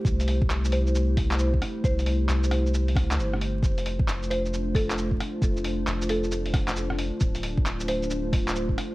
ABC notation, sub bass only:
X:1
M:4/4
L:1/16
Q:"Swing 16ths" 1/4=134
K:Flyd
V:1 name="Sub bass" clef=bass
C,,12- C,,2 z2 | C,,4 C,,6- C,, D,, G,,,4 | z16 | F,,,4 F,,,8- F,,,3 z |
D,,,12- D,,,2 z2 |]